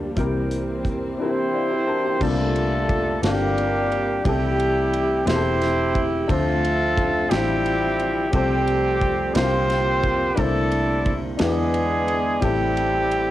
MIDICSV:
0, 0, Header, 1, 7, 480
1, 0, Start_track
1, 0, Tempo, 681044
1, 121, Time_signature, 6, 3, 24, 8
1, 9379, End_track
2, 0, Start_track
2, 0, Title_t, "Horn section"
2, 0, Program_c, 0, 61
2, 843, Note_on_c, 0, 60, 78
2, 843, Note_on_c, 0, 72, 85
2, 851, Note_on_c, 0, 64, 67
2, 854, Note_on_c, 0, 67, 68
2, 1532, Note_off_c, 0, 60, 0
2, 1532, Note_off_c, 0, 72, 0
2, 1535, Note_off_c, 0, 64, 0
2, 1537, Note_off_c, 0, 67, 0
2, 1561, Note_on_c, 0, 57, 88
2, 1561, Note_on_c, 0, 69, 95
2, 1564, Note_on_c, 0, 62, 66
2, 1567, Note_on_c, 0, 65, 65
2, 2252, Note_off_c, 0, 62, 0
2, 2253, Note_off_c, 0, 65, 0
2, 2272, Note_on_c, 0, 55, 79
2, 2272, Note_on_c, 0, 67, 86
2, 2278, Note_off_c, 0, 57, 0
2, 2278, Note_off_c, 0, 69, 0
2, 2284, Note_on_c, 0, 58, 72
2, 2284, Note_on_c, 0, 62, 69
2, 2965, Note_off_c, 0, 55, 0
2, 2965, Note_off_c, 0, 67, 0
2, 2971, Note_off_c, 0, 58, 0
2, 2971, Note_off_c, 0, 62, 0
2, 2996, Note_on_c, 0, 55, 78
2, 2996, Note_on_c, 0, 67, 85
2, 3010, Note_on_c, 0, 64, 68
2, 3687, Note_off_c, 0, 55, 0
2, 3687, Note_off_c, 0, 67, 0
2, 3694, Note_off_c, 0, 64, 0
2, 3710, Note_on_c, 0, 60, 87
2, 3710, Note_on_c, 0, 72, 95
2, 3724, Note_on_c, 0, 64, 79
2, 3724, Note_on_c, 0, 67, 83
2, 4241, Note_off_c, 0, 60, 0
2, 4241, Note_off_c, 0, 72, 0
2, 4411, Note_off_c, 0, 64, 0
2, 4411, Note_off_c, 0, 67, 0
2, 4429, Note_on_c, 0, 57, 92
2, 4429, Note_on_c, 0, 69, 100
2, 4446, Note_on_c, 0, 60, 74
2, 4452, Note_on_c, 0, 65, 80
2, 5124, Note_off_c, 0, 57, 0
2, 5124, Note_off_c, 0, 69, 0
2, 5132, Note_off_c, 0, 60, 0
2, 5135, Note_off_c, 0, 65, 0
2, 5139, Note_on_c, 0, 55, 86
2, 5139, Note_on_c, 0, 67, 93
2, 5159, Note_on_c, 0, 60, 65
2, 5160, Note_on_c, 0, 64, 67
2, 5842, Note_off_c, 0, 55, 0
2, 5842, Note_off_c, 0, 67, 0
2, 5849, Note_off_c, 0, 60, 0
2, 5849, Note_off_c, 0, 64, 0
2, 5851, Note_on_c, 0, 55, 81
2, 5851, Note_on_c, 0, 67, 88
2, 5875, Note_on_c, 0, 60, 66
2, 6555, Note_off_c, 0, 55, 0
2, 6555, Note_off_c, 0, 67, 0
2, 6567, Note_off_c, 0, 60, 0
2, 6573, Note_on_c, 0, 60, 92
2, 6573, Note_on_c, 0, 72, 100
2, 6589, Note_on_c, 0, 65, 67
2, 6591, Note_on_c, 0, 67, 78
2, 7285, Note_off_c, 0, 65, 0
2, 7285, Note_off_c, 0, 67, 0
2, 7305, Note_off_c, 0, 60, 0
2, 7305, Note_off_c, 0, 72, 0
2, 7310, Note_on_c, 0, 57, 91
2, 7310, Note_on_c, 0, 69, 99
2, 7330, Note_on_c, 0, 62, 70
2, 7331, Note_on_c, 0, 64, 61
2, 7842, Note_off_c, 0, 57, 0
2, 7842, Note_off_c, 0, 69, 0
2, 7905, Note_off_c, 0, 62, 0
2, 7905, Note_off_c, 0, 64, 0
2, 8025, Note_on_c, 0, 56, 82
2, 8025, Note_on_c, 0, 68, 89
2, 8046, Note_on_c, 0, 59, 65
2, 8047, Note_on_c, 0, 62, 65
2, 8723, Note_off_c, 0, 56, 0
2, 8723, Note_off_c, 0, 68, 0
2, 8734, Note_off_c, 0, 59, 0
2, 8734, Note_off_c, 0, 62, 0
2, 8743, Note_on_c, 0, 55, 89
2, 8743, Note_on_c, 0, 67, 97
2, 8761, Note_on_c, 0, 60, 59
2, 8764, Note_on_c, 0, 64, 63
2, 9379, Note_off_c, 0, 55, 0
2, 9379, Note_off_c, 0, 60, 0
2, 9379, Note_off_c, 0, 64, 0
2, 9379, Note_off_c, 0, 67, 0
2, 9379, End_track
3, 0, Start_track
3, 0, Title_t, "Upright piano"
3, 0, Program_c, 1, 0
3, 0, Control_c, 1, 64, 127
3, 0, Note_on_c, 1, 43, 50
3, 0, Note_on_c, 1, 62, 62
3, 0, Note_on_c, 1, 65, 51
3, 0, Note_on_c, 1, 67, 50
3, 0, Note_on_c, 1, 70, 80
3, 0, Note_on_c, 1, 72, 70
3, 112, Note_on_c, 1, 60, 65
3, 123, Note_on_c, 1, 48, 56
3, 123, Note_on_c, 1, 64, 59
3, 130, Note_off_c, 1, 67, 0
3, 130, Control_c, 1, 64, 0
3, 130, Note_on_c, 1, 67, 54
3, 131, Note_off_c, 1, 72, 0
3, 132, Note_off_c, 1, 62, 0
3, 133, Note_off_c, 1, 70, 0
3, 135, Note_off_c, 1, 43, 0
3, 136, Note_off_c, 1, 65, 0
3, 139, Note_on_c, 1, 70, 73
3, 252, Control_c, 1, 64, 127
3, 557, Note_off_c, 1, 60, 0
3, 563, Note_off_c, 1, 64, 0
3, 566, Note_off_c, 1, 67, 0
3, 571, Note_off_c, 1, 70, 0
3, 812, Note_off_c, 1, 48, 0
3, 830, Note_on_c, 1, 60, 54
3, 839, Note_on_c, 1, 62, 46
3, 848, Note_on_c, 1, 67, 49
3, 857, Note_on_c, 1, 70, 64
3, 884, Note_on_c, 1, 64, 59
3, 885, Note_off_c, 1, 62, 0
3, 1074, Note_off_c, 1, 60, 0
3, 1083, Note_off_c, 1, 67, 0
3, 1084, Note_on_c, 1, 77, 51
3, 1085, Note_on_c, 1, 74, 48
3, 1087, Note_off_c, 1, 70, 0
3, 1101, Note_off_c, 1, 64, 0
3, 1196, Note_off_c, 1, 74, 0
3, 1203, Note_on_c, 1, 72, 49
3, 1209, Note_on_c, 1, 64, 47
3, 1304, Note_off_c, 1, 77, 0
3, 1315, Note_off_c, 1, 72, 0
3, 1318, Note_off_c, 1, 64, 0
3, 1321, Note_on_c, 1, 81, 61
3, 1322, Note_on_c, 1, 70, 59
3, 1328, Note_on_c, 1, 62, 45
3, 1434, Note_off_c, 1, 70, 0
3, 1437, Note_off_c, 1, 62, 0
3, 1440, Note_on_c, 1, 67, 49
3, 1444, Note_on_c, 1, 58, 40
3, 1543, Note_off_c, 1, 81, 0
3, 1553, Note_on_c, 1, 60, 65
3, 1563, Note_on_c, 1, 62, 62
3, 1566, Note_on_c, 1, 48, 55
3, 1568, Control_c, 1, 64, 0
3, 1569, Note_off_c, 1, 58, 0
3, 1572, Note_on_c, 1, 65, 56
3, 1580, Note_on_c, 1, 58, 66
3, 1667, Note_off_c, 1, 67, 0
3, 1684, Control_c, 1, 64, 127
3, 1996, Note_off_c, 1, 60, 0
3, 2002, Note_off_c, 1, 62, 0
3, 2006, Note_off_c, 1, 65, 0
3, 2010, Note_off_c, 1, 58, 0
3, 2253, Note_off_c, 1, 48, 0
3, 2271, Note_on_c, 1, 60, 63
3, 2278, Note_on_c, 1, 62, 52
3, 2287, Note_on_c, 1, 65, 60
3, 2295, Note_on_c, 1, 69, 69
3, 2715, Note_off_c, 1, 60, 0
3, 2719, Note_off_c, 1, 62, 0
3, 2723, Note_off_c, 1, 65, 0
3, 2727, Note_off_c, 1, 69, 0
3, 2991, Note_on_c, 1, 60, 73
3, 2999, Note_on_c, 1, 64, 64
3, 3002, Note_on_c, 1, 48, 49
3, 3005, Control_c, 1, 64, 0
3, 3008, Note_on_c, 1, 67, 63
3, 3018, Note_on_c, 1, 69, 75
3, 3124, Control_c, 1, 64, 127
3, 3435, Note_off_c, 1, 60, 0
3, 3439, Note_off_c, 1, 64, 0
3, 3443, Note_off_c, 1, 67, 0
3, 3448, Note_off_c, 1, 69, 0
3, 3690, Note_off_c, 1, 48, 0
3, 3703, Note_on_c, 1, 60, 69
3, 3712, Note_on_c, 1, 64, 54
3, 3722, Note_on_c, 1, 67, 56
3, 3732, Note_on_c, 1, 68, 50
3, 3769, Note_off_c, 1, 68, 0
3, 3774, Note_on_c, 1, 69, 73
3, 4150, Note_off_c, 1, 60, 0
3, 4155, Note_off_c, 1, 64, 0
3, 4160, Note_off_c, 1, 67, 0
3, 4186, Note_off_c, 1, 69, 0
3, 4422, Note_on_c, 1, 62, 72
3, 4430, Note_on_c, 1, 76, 55
3, 4433, Note_on_c, 1, 50, 54
3, 4439, Note_on_c, 1, 65, 69
3, 4444, Control_c, 1, 64, 0
3, 4447, Note_on_c, 1, 72, 77
3, 4558, Control_c, 1, 64, 127
3, 4870, Note_off_c, 1, 62, 0
3, 4874, Note_off_c, 1, 76, 0
3, 4878, Note_off_c, 1, 65, 0
3, 4883, Note_off_c, 1, 72, 0
3, 5126, Note_off_c, 1, 50, 0
3, 5137, Note_on_c, 1, 62, 59
3, 5150, Note_on_c, 1, 64, 62
3, 5159, Note_on_c, 1, 53, 66
3, 5167, Note_on_c, 1, 72, 69
3, 5588, Note_off_c, 1, 62, 0
3, 5594, Note_off_c, 1, 64, 0
3, 5599, Note_off_c, 1, 53, 0
3, 5603, Note_off_c, 1, 72, 0
3, 5859, Note_on_c, 1, 60, 63
3, 5870, Note_on_c, 1, 65, 68
3, 5875, Note_on_c, 1, 48, 52
3, 5881, Note_on_c, 1, 69, 70
3, 5882, Control_c, 1, 64, 0
3, 5890, Note_on_c, 1, 72, 76
3, 5997, Control_c, 1, 64, 127
3, 6309, Note_off_c, 1, 60, 0
3, 6314, Note_off_c, 1, 65, 0
3, 6320, Note_off_c, 1, 69, 0
3, 6325, Note_off_c, 1, 72, 0
3, 6567, Note_off_c, 1, 48, 0
3, 6580, Note_on_c, 1, 62, 64
3, 6591, Note_on_c, 1, 64, 51
3, 6595, Note_on_c, 1, 48, 61
3, 6600, Note_on_c, 1, 70, 58
3, 6603, Control_c, 1, 64, 0
3, 6609, Note_on_c, 1, 72, 72
3, 6635, Note_on_c, 1, 65, 60
3, 6639, Note_off_c, 1, 64, 0
3, 6736, Control_c, 1, 64, 127
3, 7030, Note_off_c, 1, 62, 0
3, 7040, Note_off_c, 1, 70, 0
3, 7044, Note_off_c, 1, 72, 0
3, 7058, Note_off_c, 1, 65, 0
3, 7287, Note_off_c, 1, 48, 0
3, 7298, Note_on_c, 1, 62, 72
3, 7308, Note_on_c, 1, 64, 59
3, 7311, Note_on_c, 1, 48, 55
3, 7317, Note_on_c, 1, 58, 65
3, 7324, Control_c, 1, 64, 0
3, 7325, Note_on_c, 1, 72, 73
3, 7465, Control_c, 1, 64, 127
3, 7749, Note_off_c, 1, 62, 0
3, 7754, Note_off_c, 1, 64, 0
3, 7759, Note_off_c, 1, 58, 0
3, 7763, Note_off_c, 1, 72, 0
3, 8006, Note_off_c, 1, 48, 0
3, 8015, Note_on_c, 1, 62, 61
3, 8026, Note_on_c, 1, 52, 59
3, 8026, Note_on_c, 1, 64, 55
3, 8032, Note_on_c, 1, 68, 59
3, 8041, Note_on_c, 1, 71, 72
3, 8046, Control_c, 1, 64, 0
3, 8161, Control_c, 1, 64, 127
3, 8468, Note_off_c, 1, 62, 0
3, 8474, Note_off_c, 1, 64, 0
3, 8476, Note_off_c, 1, 68, 0
3, 8481, Note_off_c, 1, 71, 0
3, 8724, Note_off_c, 1, 52, 0
3, 8740, Note_on_c, 1, 60, 65
3, 8747, Note_on_c, 1, 64, 59
3, 8752, Note_on_c, 1, 45, 58
3, 8760, Note_on_c, 1, 67, 65
3, 8766, Note_on_c, 1, 69, 82
3, 8767, Control_c, 1, 64, 0
3, 8870, Control_c, 1, 64, 127
3, 9191, Note_off_c, 1, 60, 0
3, 9194, Note_off_c, 1, 64, 0
3, 9201, Note_off_c, 1, 67, 0
3, 9204, Note_off_c, 1, 69, 0
3, 9379, Note_off_c, 1, 45, 0
3, 9379, End_track
4, 0, Start_track
4, 0, Title_t, "Tonewheel organ"
4, 0, Program_c, 2, 16
4, 0, Note_on_c, 2, 53, 56
4, 0, Note_on_c, 2, 58, 55
4, 0, Note_on_c, 2, 62, 50
4, 0, Note_on_c, 2, 67, 59
4, 88, Note_off_c, 2, 62, 0
4, 89, Note_off_c, 2, 53, 0
4, 89, Note_off_c, 2, 58, 0
4, 90, Note_off_c, 2, 67, 0
4, 125, Note_on_c, 2, 58, 55
4, 125, Note_on_c, 2, 67, 66
4, 126, Note_on_c, 2, 60, 53
4, 128, Note_on_c, 2, 52, 52
4, 1061, Note_off_c, 2, 58, 0
4, 1062, Note_off_c, 2, 60, 0
4, 1062, Note_off_c, 2, 67, 0
4, 1075, Note_on_c, 2, 72, 49
4, 1083, Note_on_c, 2, 67, 45
4, 1190, Note_off_c, 2, 72, 0
4, 1195, Note_off_c, 2, 67, 0
4, 1206, Note_on_c, 2, 69, 59
4, 1208, Note_on_c, 2, 64, 48
4, 1316, Note_off_c, 2, 69, 0
4, 1317, Note_off_c, 2, 64, 0
4, 1320, Note_on_c, 2, 67, 69
4, 1326, Note_on_c, 2, 62, 54
4, 1433, Note_off_c, 2, 67, 0
4, 1436, Note_off_c, 2, 62, 0
4, 1438, Note_on_c, 2, 58, 42
4, 1440, Note_on_c, 2, 64, 46
4, 1533, Note_off_c, 2, 52, 0
4, 1554, Note_off_c, 2, 58, 0
4, 1557, Note_off_c, 2, 64, 0
4, 1561, Note_on_c, 2, 60, 48
4, 1562, Note_on_c, 2, 50, 51
4, 1563, Note_on_c, 2, 58, 50
4, 1565, Note_on_c, 2, 64, 48
4, 1607, Note_off_c, 2, 64, 0
4, 1608, Note_on_c, 2, 65, 57
4, 2969, Note_off_c, 2, 50, 0
4, 2969, Note_off_c, 2, 60, 0
4, 2970, Note_off_c, 2, 58, 0
4, 2992, Note_off_c, 2, 65, 0
4, 3003, Note_on_c, 2, 52, 56
4, 3003, Note_on_c, 2, 57, 51
4, 3004, Note_on_c, 2, 67, 55
4, 3005, Note_on_c, 2, 59, 46
4, 3046, Note_off_c, 2, 59, 0
4, 3047, Note_on_c, 2, 60, 47
4, 4410, Note_off_c, 2, 52, 0
4, 4410, Note_off_c, 2, 57, 0
4, 4410, Note_off_c, 2, 67, 0
4, 4416, Note_off_c, 2, 60, 0
4, 4423, Note_on_c, 2, 76, 65
4, 4424, Note_on_c, 2, 50, 65
4, 4424, Note_on_c, 2, 60, 52
4, 4425, Note_on_c, 2, 53, 56
4, 5841, Note_off_c, 2, 50, 0
4, 5841, Note_off_c, 2, 60, 0
4, 5841, Note_off_c, 2, 76, 0
4, 5842, Note_off_c, 2, 53, 0
4, 5872, Note_on_c, 2, 57, 59
4, 5874, Note_on_c, 2, 53, 57
4, 5875, Note_on_c, 2, 60, 51
4, 5878, Note_on_c, 2, 69, 73
4, 6581, Note_off_c, 2, 60, 0
4, 6584, Note_on_c, 2, 64, 61
4, 6588, Note_on_c, 2, 58, 61
4, 6589, Note_on_c, 2, 50, 67
4, 6590, Note_on_c, 2, 60, 59
4, 6594, Note_off_c, 2, 57, 0
4, 6595, Note_off_c, 2, 53, 0
4, 6597, Note_off_c, 2, 69, 0
4, 6631, Note_on_c, 2, 65, 76
4, 6636, Note_off_c, 2, 64, 0
4, 7309, Note_off_c, 2, 50, 0
4, 7310, Note_off_c, 2, 58, 0
4, 7313, Note_off_c, 2, 60, 0
4, 7315, Note_on_c, 2, 64, 62
4, 7318, Note_on_c, 2, 50, 53
4, 7318, Note_on_c, 2, 58, 48
4, 7321, Note_on_c, 2, 60, 52
4, 7333, Note_off_c, 2, 65, 0
4, 8028, Note_off_c, 2, 64, 0
4, 8031, Note_off_c, 2, 50, 0
4, 8036, Note_on_c, 2, 64, 73
4, 8038, Note_off_c, 2, 58, 0
4, 8038, Note_on_c, 2, 56, 63
4, 8039, Note_off_c, 2, 60, 0
4, 8039, Note_on_c, 2, 59, 60
4, 8040, Note_on_c, 2, 50, 68
4, 8749, Note_on_c, 2, 57, 56
4, 8750, Note_on_c, 2, 52, 57
4, 8752, Note_on_c, 2, 60, 58
4, 8755, Note_on_c, 2, 65, 51
4, 8757, Note_off_c, 2, 64, 0
4, 8758, Note_off_c, 2, 56, 0
4, 8759, Note_off_c, 2, 50, 0
4, 8759, Note_off_c, 2, 59, 0
4, 8796, Note_on_c, 2, 67, 66
4, 8802, Note_off_c, 2, 65, 0
4, 9379, Note_off_c, 2, 52, 0
4, 9379, Note_off_c, 2, 57, 0
4, 9379, Note_off_c, 2, 60, 0
4, 9379, Note_off_c, 2, 67, 0
4, 9379, End_track
5, 0, Start_track
5, 0, Title_t, "String section"
5, 0, Program_c, 3, 48
5, 0, Note_on_c, 3, 53, 61
5, 0, Note_on_c, 3, 55, 58
5, 0, Note_on_c, 3, 58, 54
5, 0, Note_on_c, 3, 62, 62
5, 89, Note_off_c, 3, 53, 0
5, 115, Note_off_c, 3, 62, 0
5, 127, Note_on_c, 3, 52, 56
5, 131, Note_on_c, 3, 60, 66
5, 1536, Note_off_c, 3, 58, 0
5, 1539, Note_off_c, 3, 55, 0
5, 1547, Note_off_c, 3, 52, 0
5, 1548, Note_off_c, 3, 60, 0
5, 9379, End_track
6, 0, Start_track
6, 0, Title_t, "Fingered electric bass"
6, 0, Program_c, 4, 33
6, 0, Note_on_c, 4, 38, 80
6, 91, Note_off_c, 4, 38, 0
6, 116, Note_on_c, 4, 36, 79
6, 808, Note_off_c, 4, 36, 0
6, 1555, Note_on_c, 4, 36, 113
6, 2247, Note_off_c, 4, 36, 0
6, 2274, Note_on_c, 4, 31, 85
6, 2966, Note_off_c, 4, 31, 0
6, 2997, Note_on_c, 4, 36, 91
6, 3687, Note_off_c, 4, 36, 0
6, 3712, Note_on_c, 4, 28, 103
6, 4405, Note_off_c, 4, 28, 0
6, 4438, Note_on_c, 4, 38, 98
6, 5128, Note_off_c, 4, 38, 0
6, 5154, Note_on_c, 4, 33, 82
6, 5846, Note_off_c, 4, 33, 0
6, 5874, Note_on_c, 4, 36, 105
6, 6567, Note_off_c, 4, 36, 0
6, 6595, Note_on_c, 4, 36, 108
6, 7287, Note_off_c, 4, 36, 0
6, 7310, Note_on_c, 4, 36, 100
6, 8005, Note_off_c, 4, 36, 0
6, 8035, Note_on_c, 4, 40, 92
6, 8728, Note_off_c, 4, 40, 0
6, 8754, Note_on_c, 4, 33, 106
6, 9379, Note_off_c, 4, 33, 0
6, 9379, End_track
7, 0, Start_track
7, 0, Title_t, "Drums"
7, 117, Note_on_c, 9, 42, 68
7, 118, Note_on_c, 9, 36, 82
7, 188, Note_off_c, 9, 42, 0
7, 189, Note_off_c, 9, 36, 0
7, 361, Note_on_c, 9, 42, 42
7, 431, Note_off_c, 9, 42, 0
7, 598, Note_on_c, 9, 36, 67
7, 598, Note_on_c, 9, 42, 36
7, 668, Note_off_c, 9, 36, 0
7, 669, Note_off_c, 9, 42, 0
7, 1557, Note_on_c, 9, 36, 107
7, 1557, Note_on_c, 9, 49, 84
7, 1627, Note_off_c, 9, 36, 0
7, 1627, Note_off_c, 9, 49, 0
7, 1802, Note_on_c, 9, 53, 43
7, 1872, Note_off_c, 9, 53, 0
7, 2039, Note_on_c, 9, 36, 82
7, 2040, Note_on_c, 9, 53, 39
7, 2109, Note_off_c, 9, 36, 0
7, 2111, Note_off_c, 9, 53, 0
7, 2278, Note_on_c, 9, 53, 74
7, 2285, Note_on_c, 9, 38, 101
7, 2349, Note_off_c, 9, 53, 0
7, 2355, Note_off_c, 9, 38, 0
7, 2522, Note_on_c, 9, 53, 40
7, 2593, Note_off_c, 9, 53, 0
7, 2761, Note_on_c, 9, 53, 32
7, 2832, Note_off_c, 9, 53, 0
7, 2997, Note_on_c, 9, 36, 102
7, 2998, Note_on_c, 9, 53, 67
7, 3068, Note_off_c, 9, 36, 0
7, 3068, Note_off_c, 9, 53, 0
7, 3239, Note_on_c, 9, 53, 39
7, 3310, Note_off_c, 9, 53, 0
7, 3479, Note_on_c, 9, 53, 39
7, 3549, Note_off_c, 9, 53, 0
7, 3716, Note_on_c, 9, 53, 72
7, 3722, Note_on_c, 9, 38, 100
7, 3786, Note_off_c, 9, 53, 0
7, 3793, Note_off_c, 9, 38, 0
7, 3958, Note_on_c, 9, 53, 43
7, 3962, Note_on_c, 9, 38, 28
7, 4028, Note_off_c, 9, 53, 0
7, 4033, Note_off_c, 9, 38, 0
7, 4196, Note_on_c, 9, 36, 85
7, 4199, Note_on_c, 9, 53, 33
7, 4266, Note_off_c, 9, 36, 0
7, 4270, Note_off_c, 9, 53, 0
7, 4436, Note_on_c, 9, 36, 99
7, 4439, Note_on_c, 9, 53, 67
7, 4507, Note_off_c, 9, 36, 0
7, 4509, Note_off_c, 9, 53, 0
7, 4685, Note_on_c, 9, 53, 47
7, 4755, Note_off_c, 9, 53, 0
7, 4916, Note_on_c, 9, 36, 92
7, 4921, Note_on_c, 9, 53, 39
7, 4987, Note_off_c, 9, 36, 0
7, 4991, Note_off_c, 9, 53, 0
7, 5153, Note_on_c, 9, 53, 75
7, 5160, Note_on_c, 9, 38, 94
7, 5224, Note_off_c, 9, 53, 0
7, 5230, Note_off_c, 9, 38, 0
7, 5397, Note_on_c, 9, 53, 45
7, 5467, Note_off_c, 9, 53, 0
7, 5635, Note_on_c, 9, 53, 32
7, 5705, Note_off_c, 9, 53, 0
7, 5870, Note_on_c, 9, 53, 72
7, 5873, Note_on_c, 9, 36, 100
7, 5941, Note_off_c, 9, 53, 0
7, 5943, Note_off_c, 9, 36, 0
7, 6114, Note_on_c, 9, 53, 42
7, 6184, Note_off_c, 9, 53, 0
7, 6353, Note_on_c, 9, 36, 81
7, 6354, Note_on_c, 9, 53, 37
7, 6424, Note_off_c, 9, 36, 0
7, 6425, Note_off_c, 9, 53, 0
7, 6590, Note_on_c, 9, 53, 83
7, 6596, Note_on_c, 9, 38, 111
7, 6660, Note_off_c, 9, 53, 0
7, 6666, Note_off_c, 9, 38, 0
7, 6835, Note_on_c, 9, 53, 45
7, 6840, Note_on_c, 9, 38, 31
7, 6906, Note_off_c, 9, 53, 0
7, 6910, Note_off_c, 9, 38, 0
7, 7071, Note_on_c, 9, 53, 31
7, 7073, Note_on_c, 9, 36, 83
7, 7142, Note_off_c, 9, 53, 0
7, 7143, Note_off_c, 9, 36, 0
7, 7311, Note_on_c, 9, 53, 67
7, 7313, Note_on_c, 9, 36, 105
7, 7381, Note_off_c, 9, 53, 0
7, 7383, Note_off_c, 9, 36, 0
7, 7552, Note_on_c, 9, 53, 42
7, 7623, Note_off_c, 9, 53, 0
7, 7792, Note_on_c, 9, 53, 39
7, 7794, Note_on_c, 9, 36, 83
7, 7863, Note_off_c, 9, 53, 0
7, 7864, Note_off_c, 9, 36, 0
7, 8026, Note_on_c, 9, 53, 78
7, 8032, Note_on_c, 9, 38, 101
7, 8096, Note_off_c, 9, 53, 0
7, 8103, Note_off_c, 9, 38, 0
7, 8274, Note_on_c, 9, 53, 42
7, 8344, Note_off_c, 9, 53, 0
7, 8514, Note_on_c, 9, 53, 36
7, 8585, Note_off_c, 9, 53, 0
7, 8756, Note_on_c, 9, 36, 105
7, 8756, Note_on_c, 9, 53, 74
7, 8826, Note_off_c, 9, 53, 0
7, 8827, Note_off_c, 9, 36, 0
7, 9000, Note_on_c, 9, 53, 46
7, 9071, Note_off_c, 9, 53, 0
7, 9243, Note_on_c, 9, 53, 40
7, 9314, Note_off_c, 9, 53, 0
7, 9379, End_track
0, 0, End_of_file